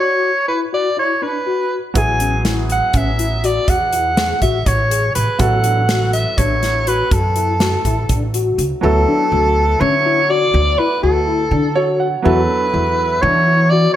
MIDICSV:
0, 0, Header, 1, 6, 480
1, 0, Start_track
1, 0, Tempo, 489796
1, 235, Time_signature, 7, 3, 24, 8
1, 13682, End_track
2, 0, Start_track
2, 0, Title_t, "Soprano saxophone"
2, 0, Program_c, 0, 64
2, 1, Note_on_c, 0, 73, 90
2, 446, Note_off_c, 0, 73, 0
2, 475, Note_on_c, 0, 71, 69
2, 584, Note_off_c, 0, 71, 0
2, 726, Note_on_c, 0, 74, 78
2, 946, Note_off_c, 0, 74, 0
2, 972, Note_on_c, 0, 73, 67
2, 1202, Note_on_c, 0, 71, 73
2, 1217, Note_off_c, 0, 73, 0
2, 1742, Note_off_c, 0, 71, 0
2, 1938, Note_on_c, 0, 80, 78
2, 2354, Note_off_c, 0, 80, 0
2, 2666, Note_on_c, 0, 78, 87
2, 2910, Note_on_c, 0, 76, 81
2, 2924, Note_off_c, 0, 78, 0
2, 3385, Note_on_c, 0, 74, 81
2, 3400, Note_off_c, 0, 76, 0
2, 3620, Note_on_c, 0, 78, 92
2, 3635, Note_off_c, 0, 74, 0
2, 4327, Note_off_c, 0, 78, 0
2, 4333, Note_on_c, 0, 76, 84
2, 4576, Note_on_c, 0, 73, 78
2, 4591, Note_off_c, 0, 76, 0
2, 5042, Note_off_c, 0, 73, 0
2, 5048, Note_on_c, 0, 71, 77
2, 5294, Note_on_c, 0, 78, 89
2, 5309, Note_off_c, 0, 71, 0
2, 6006, Note_off_c, 0, 78, 0
2, 6012, Note_on_c, 0, 76, 82
2, 6252, Note_on_c, 0, 73, 77
2, 6267, Note_off_c, 0, 76, 0
2, 6743, Note_on_c, 0, 71, 83
2, 6757, Note_off_c, 0, 73, 0
2, 6986, Note_on_c, 0, 69, 70
2, 7001, Note_off_c, 0, 71, 0
2, 8180, Note_off_c, 0, 69, 0
2, 8653, Note_on_c, 0, 69, 83
2, 9609, Note_on_c, 0, 73, 91
2, 9624, Note_off_c, 0, 69, 0
2, 10096, Note_on_c, 0, 74, 108
2, 10111, Note_off_c, 0, 73, 0
2, 10569, Note_on_c, 0, 71, 90
2, 10584, Note_off_c, 0, 74, 0
2, 10806, Note_off_c, 0, 71, 0
2, 10812, Note_on_c, 0, 69, 69
2, 11728, Note_off_c, 0, 69, 0
2, 12003, Note_on_c, 0, 71, 79
2, 12952, Note_on_c, 0, 73, 85
2, 12966, Note_off_c, 0, 71, 0
2, 13424, Note_on_c, 0, 74, 92
2, 13439, Note_off_c, 0, 73, 0
2, 13654, Note_off_c, 0, 74, 0
2, 13682, End_track
3, 0, Start_track
3, 0, Title_t, "Grand piano"
3, 0, Program_c, 1, 0
3, 1899, Note_on_c, 1, 54, 57
3, 1910, Note_on_c, 1, 59, 47
3, 1918, Note_on_c, 1, 64, 50
3, 1933, Note_on_c, 1, 68, 62
3, 5240, Note_off_c, 1, 54, 0
3, 5246, Note_off_c, 1, 59, 0
3, 5250, Note_off_c, 1, 64, 0
3, 5257, Note_off_c, 1, 68, 0
3, 5278, Note_on_c, 1, 54, 53
3, 5286, Note_on_c, 1, 59, 44
3, 5298, Note_on_c, 1, 64, 45
3, 5303, Note_on_c, 1, 69, 61
3, 8608, Note_off_c, 1, 54, 0
3, 8612, Note_off_c, 1, 59, 0
3, 8618, Note_off_c, 1, 64, 0
3, 8620, Note_off_c, 1, 69, 0
3, 8634, Note_on_c, 1, 54, 52
3, 8645, Note_on_c, 1, 59, 47
3, 8657, Note_on_c, 1, 64, 56
3, 8666, Note_on_c, 1, 69, 63
3, 11520, Note_on_c, 1, 73, 73
3, 11745, Note_off_c, 1, 73, 0
3, 11757, Note_on_c, 1, 78, 50
3, 11956, Note_off_c, 1, 54, 0
3, 11962, Note_off_c, 1, 59, 0
3, 11968, Note_off_c, 1, 64, 0
3, 11972, Note_off_c, 1, 69, 0
3, 11980, Note_on_c, 1, 54, 54
3, 11984, Note_off_c, 1, 78, 0
3, 11988, Note_on_c, 1, 59, 53
3, 12001, Note_on_c, 1, 64, 55
3, 12010, Note_on_c, 1, 69, 59
3, 13682, Note_off_c, 1, 54, 0
3, 13682, Note_off_c, 1, 59, 0
3, 13682, Note_off_c, 1, 64, 0
3, 13682, Note_off_c, 1, 69, 0
3, 13682, End_track
4, 0, Start_track
4, 0, Title_t, "Tine electric piano"
4, 0, Program_c, 2, 4
4, 0, Note_on_c, 2, 66, 63
4, 287, Note_off_c, 2, 66, 0
4, 471, Note_on_c, 2, 64, 61
4, 621, Note_off_c, 2, 64, 0
4, 711, Note_on_c, 2, 66, 61
4, 861, Note_off_c, 2, 66, 0
4, 950, Note_on_c, 2, 64, 67
4, 1101, Note_off_c, 2, 64, 0
4, 1195, Note_on_c, 2, 62, 76
4, 1344, Note_off_c, 2, 62, 0
4, 1434, Note_on_c, 2, 66, 53
4, 1732, Note_off_c, 2, 66, 0
4, 1917, Note_on_c, 2, 64, 64
4, 2066, Note_off_c, 2, 64, 0
4, 2161, Note_on_c, 2, 61, 59
4, 2309, Note_off_c, 2, 61, 0
4, 2398, Note_on_c, 2, 64, 58
4, 2696, Note_off_c, 2, 64, 0
4, 2880, Note_on_c, 2, 61, 77
4, 3029, Note_off_c, 2, 61, 0
4, 3125, Note_on_c, 2, 64, 63
4, 3273, Note_off_c, 2, 64, 0
4, 3368, Note_on_c, 2, 66, 71
4, 3663, Note_off_c, 2, 66, 0
4, 3849, Note_on_c, 2, 64, 63
4, 3996, Note_off_c, 2, 64, 0
4, 4087, Note_on_c, 2, 68, 70
4, 4236, Note_off_c, 2, 68, 0
4, 4330, Note_on_c, 2, 66, 73
4, 4478, Note_off_c, 2, 66, 0
4, 4569, Note_on_c, 2, 64, 64
4, 4717, Note_off_c, 2, 64, 0
4, 4811, Note_on_c, 2, 68, 61
4, 5107, Note_off_c, 2, 68, 0
4, 5293, Note_on_c, 2, 66, 75
4, 5440, Note_off_c, 2, 66, 0
4, 5535, Note_on_c, 2, 62, 70
4, 5682, Note_off_c, 2, 62, 0
4, 5775, Note_on_c, 2, 66, 60
4, 6070, Note_off_c, 2, 66, 0
4, 6255, Note_on_c, 2, 62, 72
4, 6402, Note_off_c, 2, 62, 0
4, 6492, Note_on_c, 2, 64, 60
4, 6640, Note_off_c, 2, 64, 0
4, 6730, Note_on_c, 2, 66, 68
4, 7027, Note_off_c, 2, 66, 0
4, 7215, Note_on_c, 2, 64, 64
4, 7362, Note_off_c, 2, 64, 0
4, 7451, Note_on_c, 2, 66, 65
4, 7600, Note_off_c, 2, 66, 0
4, 7698, Note_on_c, 2, 64, 72
4, 7845, Note_off_c, 2, 64, 0
4, 7933, Note_on_c, 2, 62, 70
4, 8081, Note_off_c, 2, 62, 0
4, 8177, Note_on_c, 2, 66, 65
4, 8471, Note_off_c, 2, 66, 0
4, 8656, Note_on_c, 2, 66, 74
4, 8803, Note_off_c, 2, 66, 0
4, 8894, Note_on_c, 2, 62, 77
4, 9042, Note_off_c, 2, 62, 0
4, 9137, Note_on_c, 2, 66, 60
4, 9431, Note_off_c, 2, 66, 0
4, 9617, Note_on_c, 2, 61, 69
4, 9763, Note_off_c, 2, 61, 0
4, 9852, Note_on_c, 2, 64, 63
4, 10000, Note_off_c, 2, 64, 0
4, 10089, Note_on_c, 2, 66, 64
4, 10385, Note_off_c, 2, 66, 0
4, 10574, Note_on_c, 2, 64, 80
4, 10720, Note_off_c, 2, 64, 0
4, 10804, Note_on_c, 2, 66, 75
4, 10953, Note_off_c, 2, 66, 0
4, 11046, Note_on_c, 2, 64, 66
4, 11194, Note_off_c, 2, 64, 0
4, 11286, Note_on_c, 2, 62, 73
4, 11434, Note_off_c, 2, 62, 0
4, 11527, Note_on_c, 2, 66, 64
4, 11821, Note_off_c, 2, 66, 0
4, 12001, Note_on_c, 2, 66, 84
4, 12150, Note_off_c, 2, 66, 0
4, 12238, Note_on_c, 2, 62, 69
4, 12387, Note_off_c, 2, 62, 0
4, 12483, Note_on_c, 2, 64, 67
4, 12777, Note_off_c, 2, 64, 0
4, 12963, Note_on_c, 2, 62, 77
4, 13110, Note_off_c, 2, 62, 0
4, 13203, Note_on_c, 2, 64, 66
4, 13349, Note_off_c, 2, 64, 0
4, 13445, Note_on_c, 2, 66, 65
4, 13682, Note_off_c, 2, 66, 0
4, 13682, End_track
5, 0, Start_track
5, 0, Title_t, "Upright bass"
5, 0, Program_c, 3, 32
5, 1914, Note_on_c, 3, 33, 89
5, 2740, Note_off_c, 3, 33, 0
5, 2879, Note_on_c, 3, 33, 83
5, 3498, Note_off_c, 3, 33, 0
5, 3605, Note_on_c, 3, 40, 84
5, 4222, Note_off_c, 3, 40, 0
5, 4331, Note_on_c, 3, 33, 69
5, 4535, Note_off_c, 3, 33, 0
5, 4571, Note_on_c, 3, 33, 82
5, 4981, Note_off_c, 3, 33, 0
5, 5054, Note_on_c, 3, 33, 73
5, 5155, Note_off_c, 3, 33, 0
5, 5287, Note_on_c, 3, 33, 97
5, 6110, Note_off_c, 3, 33, 0
5, 6250, Note_on_c, 3, 33, 77
5, 6867, Note_off_c, 3, 33, 0
5, 6972, Note_on_c, 3, 42, 97
5, 7588, Note_off_c, 3, 42, 0
5, 7692, Note_on_c, 3, 33, 75
5, 7898, Note_off_c, 3, 33, 0
5, 7930, Note_on_c, 3, 33, 71
5, 8342, Note_off_c, 3, 33, 0
5, 8410, Note_on_c, 3, 37, 79
5, 8514, Note_off_c, 3, 37, 0
5, 8657, Note_on_c, 3, 38, 91
5, 8860, Note_off_c, 3, 38, 0
5, 9132, Note_on_c, 3, 38, 79
5, 9542, Note_off_c, 3, 38, 0
5, 9610, Note_on_c, 3, 50, 97
5, 10225, Note_off_c, 3, 50, 0
5, 10328, Note_on_c, 3, 38, 95
5, 10534, Note_off_c, 3, 38, 0
5, 10811, Note_on_c, 3, 38, 77
5, 11219, Note_off_c, 3, 38, 0
5, 11281, Note_on_c, 3, 50, 89
5, 11897, Note_off_c, 3, 50, 0
5, 12009, Note_on_c, 3, 40, 100
5, 12212, Note_off_c, 3, 40, 0
5, 12482, Note_on_c, 3, 40, 75
5, 12891, Note_off_c, 3, 40, 0
5, 12962, Note_on_c, 3, 52, 100
5, 13574, Note_off_c, 3, 52, 0
5, 13682, End_track
6, 0, Start_track
6, 0, Title_t, "Drums"
6, 1914, Note_on_c, 9, 42, 69
6, 1916, Note_on_c, 9, 36, 96
6, 2012, Note_off_c, 9, 42, 0
6, 2014, Note_off_c, 9, 36, 0
6, 2155, Note_on_c, 9, 42, 52
6, 2253, Note_off_c, 9, 42, 0
6, 2400, Note_on_c, 9, 38, 75
6, 2400, Note_on_c, 9, 42, 61
6, 2498, Note_off_c, 9, 38, 0
6, 2498, Note_off_c, 9, 42, 0
6, 2642, Note_on_c, 9, 42, 52
6, 2740, Note_off_c, 9, 42, 0
6, 2876, Note_on_c, 9, 42, 56
6, 2880, Note_on_c, 9, 36, 90
6, 2974, Note_off_c, 9, 42, 0
6, 2978, Note_off_c, 9, 36, 0
6, 3126, Note_on_c, 9, 42, 48
6, 3224, Note_off_c, 9, 42, 0
6, 3369, Note_on_c, 9, 42, 49
6, 3467, Note_off_c, 9, 42, 0
6, 3606, Note_on_c, 9, 36, 80
6, 3606, Note_on_c, 9, 42, 68
6, 3704, Note_off_c, 9, 36, 0
6, 3704, Note_off_c, 9, 42, 0
6, 3847, Note_on_c, 9, 42, 51
6, 3945, Note_off_c, 9, 42, 0
6, 4090, Note_on_c, 9, 38, 84
6, 4090, Note_on_c, 9, 42, 65
6, 4188, Note_off_c, 9, 38, 0
6, 4188, Note_off_c, 9, 42, 0
6, 4329, Note_on_c, 9, 36, 60
6, 4329, Note_on_c, 9, 42, 54
6, 4427, Note_off_c, 9, 36, 0
6, 4427, Note_off_c, 9, 42, 0
6, 4570, Note_on_c, 9, 42, 65
6, 4571, Note_on_c, 9, 36, 84
6, 4668, Note_off_c, 9, 42, 0
6, 4669, Note_off_c, 9, 36, 0
6, 4815, Note_on_c, 9, 42, 59
6, 4913, Note_off_c, 9, 42, 0
6, 5050, Note_on_c, 9, 42, 57
6, 5148, Note_off_c, 9, 42, 0
6, 5286, Note_on_c, 9, 42, 73
6, 5289, Note_on_c, 9, 36, 89
6, 5384, Note_off_c, 9, 42, 0
6, 5387, Note_off_c, 9, 36, 0
6, 5525, Note_on_c, 9, 42, 55
6, 5623, Note_off_c, 9, 42, 0
6, 5770, Note_on_c, 9, 38, 84
6, 5770, Note_on_c, 9, 42, 64
6, 5868, Note_off_c, 9, 38, 0
6, 5868, Note_off_c, 9, 42, 0
6, 6011, Note_on_c, 9, 42, 51
6, 6109, Note_off_c, 9, 42, 0
6, 6251, Note_on_c, 9, 36, 90
6, 6251, Note_on_c, 9, 42, 58
6, 6349, Note_off_c, 9, 36, 0
6, 6349, Note_off_c, 9, 42, 0
6, 6494, Note_on_c, 9, 38, 30
6, 6494, Note_on_c, 9, 42, 48
6, 6592, Note_off_c, 9, 38, 0
6, 6592, Note_off_c, 9, 42, 0
6, 6733, Note_on_c, 9, 42, 48
6, 6831, Note_off_c, 9, 42, 0
6, 6972, Note_on_c, 9, 36, 95
6, 6972, Note_on_c, 9, 42, 65
6, 7070, Note_off_c, 9, 36, 0
6, 7070, Note_off_c, 9, 42, 0
6, 7210, Note_on_c, 9, 42, 51
6, 7308, Note_off_c, 9, 42, 0
6, 7450, Note_on_c, 9, 38, 77
6, 7450, Note_on_c, 9, 42, 57
6, 7548, Note_off_c, 9, 38, 0
6, 7548, Note_off_c, 9, 42, 0
6, 7693, Note_on_c, 9, 36, 53
6, 7694, Note_on_c, 9, 42, 53
6, 7791, Note_off_c, 9, 36, 0
6, 7792, Note_off_c, 9, 42, 0
6, 7931, Note_on_c, 9, 42, 64
6, 7934, Note_on_c, 9, 36, 78
6, 8029, Note_off_c, 9, 42, 0
6, 8032, Note_off_c, 9, 36, 0
6, 8173, Note_on_c, 9, 42, 52
6, 8271, Note_off_c, 9, 42, 0
6, 8415, Note_on_c, 9, 42, 50
6, 8513, Note_off_c, 9, 42, 0
6, 13682, End_track
0, 0, End_of_file